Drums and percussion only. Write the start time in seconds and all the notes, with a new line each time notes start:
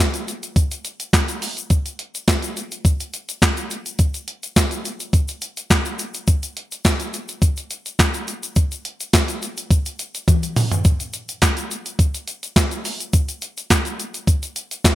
0.00 clap, shaker
0.14 closed hi-hat, shaker
0.28 closed hi-hat, shaker
0.43 closed hi-hat, shaker
0.56 kick, closed hi-hat, shaker
0.71 closed hi-hat, shaker
0.85 closed hi-hat, shaker
1.00 closed hi-hat, shaker
1.13 kick, snare, clap, closed hi-hat, shaker
1.28 closed hi-hat, shaker
1.42 open hi-hat, shaker
1.57 closed hi-hat, shaker
1.70 kick, closed hi-hat, shaker
1.86 closed hi-hat, shaker
1.99 closed hi-hat
2.15 closed hi-hat, shaker
2.28 kick, snare, clap, closed hi-hat, shaker
2.42 closed hi-hat, shaker
2.57 closed hi-hat, shaker
2.72 closed hi-hat, shaker
2.85 kick, closed hi-hat, shaker
3.00 closed hi-hat, shaker
3.14 closed hi-hat, shaker
3.29 closed hi-hat, shaker
3.42 kick, snare, clap, closed hi-hat, shaker
3.57 closed hi-hat, shaker
3.70 closed hi-hat, shaker
3.86 closed hi-hat, shaker
3.99 kick, closed hi-hat, shaker
4.14 closed hi-hat, shaker
4.28 closed hi-hat
4.43 closed hi-hat, shaker
4.56 kick, snare, clap, closed hi-hat, shaker
4.71 closed hi-hat, shaker
4.85 closed hi-hat, shaker
5.00 closed hi-hat, shaker
5.13 kick, closed hi-hat, shaker
5.28 closed hi-hat, shaker
5.42 closed hi-hat, shaker
5.57 closed hi-hat, shaker
5.70 kick, snare, clap, closed hi-hat, shaker
5.85 closed hi-hat, shaker
5.99 closed hi-hat, shaker
6.14 closed hi-hat, shaker
6.27 kick, closed hi-hat, shaker
6.43 closed hi-hat, shaker
6.57 closed hi-hat
6.72 closed hi-hat, shaker
6.85 kick, snare, clap, closed hi-hat, shaker
7.00 closed hi-hat, shaker
7.14 closed hi-hat, shaker
7.28 closed hi-hat, shaker
7.42 kick, closed hi-hat, shaker
7.57 closed hi-hat, shaker
7.70 closed hi-hat, shaker
7.86 closed hi-hat, shaker
7.99 kick, snare, clap, closed hi-hat, shaker
8.14 closed hi-hat, shaker
8.28 closed hi-hat, shaker
8.43 closed hi-hat, shaker
8.56 kick, closed hi-hat, shaker
8.72 closed hi-hat, shaker
8.85 closed hi-hat
9.00 closed hi-hat, shaker
9.13 kick, snare, clap, closed hi-hat, shaker
9.28 closed hi-hat, shaker
9.42 closed hi-hat, shaker
9.57 closed hi-hat, shaker
9.71 kick, closed hi-hat, shaker
9.86 closed hi-hat, shaker
9.99 closed hi-hat, shaker
10.15 closed hi-hat, shaker
10.28 kick, closed hi-hat, high tom, shaker
10.43 closed hi-hat, shaker
10.56 mid tom, open hi-hat, shaker
10.71 closed hi-hat, floor tom, shaker
10.85 kick, closed hi-hat, shaker
11.00 closed hi-hat, shaker
11.13 closed hi-hat, shaker
11.29 closed hi-hat, shaker
11.42 kick, snare, clap, closed hi-hat, shaker
11.57 closed hi-hat, shaker
11.71 closed hi-hat, shaker
11.86 closed hi-hat, shaker
11.99 kick, closed hi-hat, shaker
12.14 closed hi-hat, shaker
12.28 closed hi-hat, shaker
12.43 closed hi-hat, shaker
12.56 kick, snare, clap, closed hi-hat, shaker
12.71 closed hi-hat, shaker
12.85 open hi-hat, shaker
13.00 closed hi-hat, shaker
13.13 kick, closed hi-hat, shaker
13.29 closed hi-hat, shaker
13.42 closed hi-hat, shaker
13.57 closed hi-hat, shaker
13.70 kick, snare, clap, closed hi-hat, shaker
13.85 closed hi-hat, shaker
14.00 closed hi-hat, shaker
14.14 closed hi-hat, shaker
14.27 kick, closed hi-hat, shaker
14.43 closed hi-hat, shaker
14.56 closed hi-hat, shaker
14.71 closed hi-hat, shaker
14.84 kick, snare, clap, closed hi-hat, shaker